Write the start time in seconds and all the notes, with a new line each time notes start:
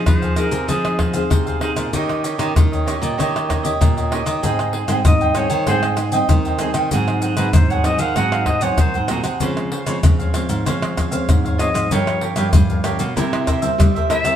Already playing: C4 D#4 G#4
0.06 C3 F3 C5, pandeiro, tamborim, maracas, surdo
0.22 G#4 C5 F5, pandeiro, maracas
0.36 C4 D#4 G#4 A#4 C5 F5, pandeiro, tamborim, maracas
0.51 C3 G#4 C5 F5, pandeiro, maracas
0.67 F3 C4 D#4 G#4 C5 F5, pandeiro, tamborim, maracas, surdo
0.85 pandeiro, tamborim, maracas
0.98 D#4 G#4 C5 F5, pandeiro, tamborim, surdo
1.14 C4 D#4 G#4 C5 F5, pandeiro, maracas
1.30 C3, pandeiro, tamborim, maracas, surdo
1.46 G#4 C5 F5, pandeiro, maracas
1.61 C4 D#4 G#4 C5 F5, pandeiro, tamborim
1.75 A#2 G#4 C5 F5, pandeiro, tamborim, maracas
1.93 D#3 A#3 C#4 D#4 G4 C#5 D#5, pandeiro, maracas, surdo
2.09 pandeiro, tamborim, maracas
2.24 D#4 G4 C#5 D#5, pandeiro, maracas
2.38 D#3 A#3 C#4 D#4 G4 C#5 D#5, pandeiro, tamborim, maracas
2.56 A#2 D#3, pandeiro, tamborim, maracas, surdo
2.72 G4 C#5 D#5, pandeiro, maracas
2.86 A#3 C#4 D#4 G4 C#5 D#5, pandeiro, tamborim, maracas
3.01 A#2 G4 C#5 D#5, pandeiro, maracas
3.17 D#3 A#3 C#4 D#4 G4 C#5 D#5, pandeiro, tamborim, maracas, surdo
3.36 pandeiro, tamborim, maracas
3.48 D#4 G4 C#5 D#5, pandeiro, tamborim, maracas, surdo
3.63 A#3 C#4 G4 C#5 D#5, pandeiro, maracas
3.81 A#2, pandeiro, tamborim, maracas, surdo
3.97 G4 C#5 D#5, pandeiro, maracas
4.11 A#3 C#4 D#4 G4 C#5 D#5, pandeiro, tamborim
4.26 D#3 G4 C#5 D#5, pandeiro, tamborim, maracas
4.42 G#2 C4 D#4 G#4 C5 D#5 G5, pandeiro, maracas, surdo
4.59 pandeiro, tamborim, maracas
4.73 G#4 C5 D#5 G5, pandeiro
4.88 G#2 G3 C4 D#4 G#4 C5 D#5 G5, pandeiro, tamborim, maracas
5.05 G#2 D#3 D#5, pandeiro, tamborim, maracas, surdo
5.21 C5 D#5 G5, pandeiro, maracas
5.35 G3 C4 D#4 G#4 C5 C#5 D#5 G5, pandeiro, tamborim, maracas
5.50 D#3 C5 D#5 G5, pandeiro, maracas
5.67 G#2 G3 C4 D#4 G#4 C5 D#5 G5, pandeiro, tamborim, maracas, surdo
5.83 pandeiro, tamborim, maracas
5.97 G#4 C5 D#5 G5, pandeiro, tamborim, maracas
6.12 G3 C4 D#4 C5 D#5 G5, pandeiro, maracas
6.29 D#3, pandeiro, tamborim, maracas, surdo
6.45 C5 D#5 G5, pandeiro, maracas
6.59 G3 C4 D#4 G#4 C5 D#5 G5, pandeiro, tamborim, maracas
6.74 D#3 C5 D#5 G5, pandeiro, tamborim, maracas
6.91 G#2 F#3 C4 D#4 F#4 G#4 C5 F#5, pandeiro, maracas, surdo
7.08 pandeiro, tamborim, maracas
7.22 F#4 G#4 C5 F#5, pandeiro, maracas
7.37 G#2 F#3 C4 D#4 F#4 G#4 B4 C5 F#5, pandeiro, tamborim, maracas
7.53 G#2 D#3 C5, pandeiro, tamborim, maracas, surdo
7.70 G#4 C5 C#5 F#5, pandeiro, maracas
7.84 F#3 C4 D#4 F#4 G#4 C5 D#5 F#5, pandeiro, tamborim, maracas
7.99 D#3 G#4 C5 F5 F#5, pandeiro, maracas
8.16 G#2 F#3 C4 D#4 F#4 G#4 C5 F#5, pandeiro, tamborim, maracas, surdo
8.32 F5, pandeiro, tamborim, maracas
8.46 F#4 G#4 C5 D#5 F#5, pandeiro, tamborim, surdo
8.61 F#3 C4 D#4 G#4 C5 C#5 F#5, pandeiro, maracas
8.78 D#3 C5, pandeiro, tamborim, maracas, surdo
8.94 G#2 G#4 C5 F#5, pandeiro, maracas
9.08 A#2 F#3 C4 D#4 F#4 G#4 C5 F#5, pandeiro, tamborim, maracas
9.24 C3 G#4 C5 F#5, pandeiro, tamborim, maracas
9.40 C#3 F3 G#3 C4 F4 C5 C#5 F5, pandeiro, maracas, surdo
9.57 pandeiro, tamborim, maracas
9.72 F4 C5 C#5 F5, pandeiro
9.86 C#3 F3 G#3 C4 F4 C5 C#5 F5, pandeiro, tamborim, maracas
10.03 G#2 C#3, pandeiro, tamborim, maracas, surdo
10.19 C5 C#5 F5, pandeiro, maracas
10.34 F3 G#3 C4 F4 C5 C#5 F5, pandeiro, tamborim, maracas
10.49 G#2 C5 C#5 F5, pandeiro, maracas
10.65 C#3 F3 G#3 C4 F4 C5 C#5 F5, pandeiro, tamborim, maracas, surdo
10.82 pandeiro, tamborim, maracas
10.97 F4 C5 C#5 F5, pandeiro, tamborim, maracas, surdo
11.11 F3 G#3 C4 C5 C#5 F5, pandeiro, maracas
11.29 G#2, pandeiro, tamborim, maracas, surdo
11.45 C5 C#5 F5, pandeiro, maracas
11.58 F3 G#3 C4 F4 C5 C#5 D#5 F5, pandeiro, tamborim, maracas
11.74 G#2 C5 C#5 F5, pandeiro, tamborim, maracas
11.91 G2 F3 A#3 C#4 G4 A#4 C#5 F5, pandeiro, maracas, surdo
12.07 pandeiro, tamborim, maracas
12.21 G4 A#4 C#5 F5, pandeiro
12.36 G2 F3 A#3 C#4 G4 A#4 C#5 F5, pandeiro, tamborim, maracas
12.53 G2, pandeiro, tamborim, maracas, surdo
12.70 A#4 C#5 F5, pandeiro, maracas
12.84 F3 A#3 C#4 G4 A#4 C#5 F5, pandeiro, tamborim, maracas
12.99 B2 A#4 C#5 F5, pandeiro, maracas
13.16 C3 G3 A#3 E4 A#4 C5 E5, pandeiro, tamborim, maracas, surdo
13.33 pandeiro, tamborim, maracas
13.47 E4 A#4 C5 E5, pandeiro, tamborim, maracas, surdo
13.61 G3 A#3 E4 A#4 C5 E5, pandeiro, maracas
13.78 G2 G3, pandeiro, tamborim, maracas, surdo
13.95 A#4 C5 E5, pandeiro, maracas
14.09 G3 A#3 E4 A#4 C5 E5, pandeiro, tamborim, maracas
14.24 C3 A#4 C5 E5, pandeiro, tamborim, maracas